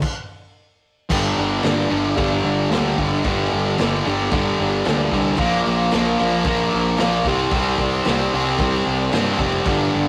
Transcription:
0.02 kick, crash
1.10 picked electric bass G1, distorted electric guitar G2 D3 G3, kick, crash
1.38 picked electric bass G1
1.63 picked electric bass G1, distorted electric guitar G2 D3 G3, snare, crash
1.90 picked electric bass G1, distorted electric guitar G2 D3 G3
2.17 picked electric bass G1, distorted electric guitar G2 D3 G3, kick, crash
2.44 picked electric bass G1
2.70 picked electric bass D2, distorted electric guitar G2 D3 G3, snare, crash
2.98 picked electric bass G1, distorted electric guitar G2 D3 G3, kick
3.24 picked electric bass G1, distorted electric guitar G2 D3 G3, kick, crash
3.53 picked electric bass G1
3.78 picked electric bass G1, distorted electric guitar G2 D3 G3, snare, crash
4.06 picked electric bass G1, distorted electric guitar G2 D3 G3
4.31 picked electric bass G1, distorted electric guitar G2 D3 G3, kick, crash
4.60 picked electric bass G1
4.85 picked electric bass D2, distorted electric guitar G2 D3 G3, snare, crash
5.12 picked electric bass C2, distorted electric guitar G2 D3 G3, kick
5.37 picked electric bass A#1, distorted electric guitar A#2 F3, kick, crash
5.41 distorted electric guitar A#3
5.67 picked electric bass A#1
5.91 picked electric bass A#1, distorted electric guitar A#2 F3 A#3, snare, crash
6.19 picked electric bass A#1, distorted electric guitar A#2 F3 A#3
6.44 picked electric bass A#1, distorted electric guitar A#2 F3 A#3, kick, crash
6.74 picked electric bass A#1
6.97 picked electric bass A#1, distorted electric guitar A#2 F3 A#3, snare, crash
7.25 picked electric bass C2, distorted electric guitar C3 G3 C4, kick
7.51 picked electric bass C2, distorted electric guitar C3 G3, kick, crash
7.55 distorted electric guitar C4
7.78 picked electric bass C2, kick
8.05 picked electric bass C2, distorted electric guitar C3 G3, snare, crash
8.09 distorted electric guitar C4
8.34 picked electric bass C2, distorted electric guitar C3 G3 C4
8.59 picked electric bass C2, distorted electric guitar C3 G3 C4, kick, crash
8.87 picked electric bass C2
9.12 picked electric bass G2, distorted electric guitar C3 G3 C4, snare, crash
9.39 picked electric bass F1, distorted electric guitar C3 G3 C4, kick
9.65 picked electric bass G1, distorted electric guitar G2 D3 G3, kick, crash
9.95 picked electric bass G1

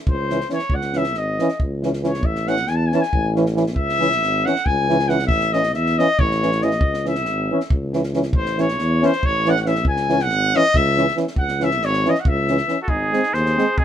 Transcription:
0.07 tuba C#2, trumpet C5, kick
0.30 euphonium E3, trombone C#4, snare
0.40 snare
0.49 euphonium E3, trombone C#4, trumpet C#5, snare
0.59 snare
0.70 tuba C#2, kick
0.75 trumpet F#5
0.81 snare
0.93 euphonium E3, trombone C#4, snare
0.97 trumpet E5
1.04 snare
1.14 tuba G#1, trumpet D#5, snare
1.39 euphonium E3, trombone C#4, snare
1.49 snare
1.60 tuba C#2, kick
1.83 euphonium E3, trombone C#4, snare
1.93 snare
2.03 euphonium E3, trombone C#4, trumpet C#5, snare
2.14 snare
2.23 tuba A1, trumpet E5, kick
2.35 snare
2.47 euphonium E3, trombone C#4, trumpet F#5, snare
2.56 snare
2.67 tuba E2, trumpet G#5, snare
2.75 trumpet A5
2.87 trumpet G#5
2.92 euphonium E3, trombone C#4, trumpet A5, snare
3.01 trumpet G#5, snare
3.13 tuba A1, kick
3.35 euphonium E3, trombone C#4, snare
3.46 snare
3.56 euphonium E3, trombone C#4, snare
3.66 snare
3.76 tuba C#2, trumpet E5, kick
3.89 snare
4.00 euphonium E3, trombone C#4, snare
4.12 snare
4.20 tuba G#1, snare
4.45 euphonium E3, trombone C#4, trumpet F#5, snare
4.56 snare
4.66 tuba C#2, trumpet G#5, kick
4.89 euphonium E3, trombone C#4, snare
4.99 snare
5.09 euphonium E3, trombone C#4, trumpet F#5, snare
5.19 snare
5.27 tuba A1, trumpet E5, kick
5.40 snare
5.53 euphonium E3, trombone C#4, trumpet D#5, snare
5.63 snare
5.74 tuba E2, trumpet E5, snare
5.86 snare
5.98 euphonium E3, trombone C#4, trumpet D#5, snare
6.19 tuba A1, trumpet C#5, kick
6.31 snare
6.42 euphonium E3, trombone C#4, snare
6.52 snare
6.61 euphonium E3, trombone C#4, trumpet D#5, snare
6.71 snare
6.81 tuba C#2, kick
6.94 snare
7.05 euphonium E3, trombone C#4, trumpet E5, snare
7.15 snare
7.25 tuba G#1, snare
7.52 euphonium E3, trombone C#4
7.60 snare
7.70 tuba C#2, kick
7.93 euphonium E3, trombone C#4, snare
8.03 snare
8.13 euphonium E3, trombone C#4, snare
8.22 snare
8.33 tuba A1, trumpet C5, kick
8.46 snare
8.58 euphonium E3, trombone C#4, trumpet C#5, snare
8.68 snare
8.79 tuba E2, snare
9.02 euphonium E3, trombone C#4, trumpet C5, snare
9.12 snare
9.23 tuba A1, trumpet C#5, kick
9.45 euphonium E3, trombone C#4, snare
9.50 trumpet F#5
9.56 snare
9.62 euphonium E3, trumpet F#5
9.66 trombone C#4, trumpet E5, snare
9.75 snare
9.85 tuba C#2, trumpet G#5, kick
9.96 snare
10.09 euphonium E3, trombone C#4, snare
10.19 trumpet F#5, snare
10.29 tuba G#1, snare
10.54 euphonium E3, trombone C#4, trumpet D#5, snare
10.64 snare
10.74 tuba C#2, trumpet E5, kick
10.97 euphonium E3, trombone C#4, snare
11.08 snare
11.16 euphonium E3, trombone C#4, snare
11.27 snare
11.36 tuba C#2, trumpet F#5, kick
11.48 snare
11.60 euphonium E3, trombone C#4, trumpet E5, snare
11.71 snare
11.81 tuba G#1, trumpet C#5, snare
11.93 snare
12.05 euphonium E3, trombone C#4, trumpet D#5, snare
12.15 snare
12.20 trumpet F#5
12.25 tuba C#2, trumpet E5, kick
12.47 euphonium E3, trombone C#4, snare
12.57 snare
12.68 euphonium E3, trombone C#4, snare
12.82 trumpet F#4, cornet A4
12.88 tuba G#1, trumpet D#4, cornet G#4, kick
13.12 euphonium G#3, trombone C4, snare
13.23 snare
13.33 tuba D#2, trumpet G#4, cornet C5, snare
13.46 snare
13.56 euphonium G#3, trombone C4, snare
13.78 tuba G#1, trumpet D#4, cornet G#4, kick

